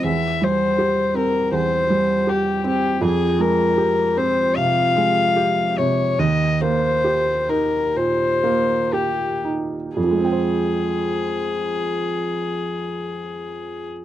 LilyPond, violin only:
\new Staff \with { instrumentName = "Violin" } { \time 4/4 \key f \minor \tempo 4 = 72 e''8 c''4 bes'8 c''4 g'8 g'8 | aes'8 bes'4 c''8 f''4. des''8 | ees''8 c''4 bes'8 c''4 g'8 r8 | aes'1 | }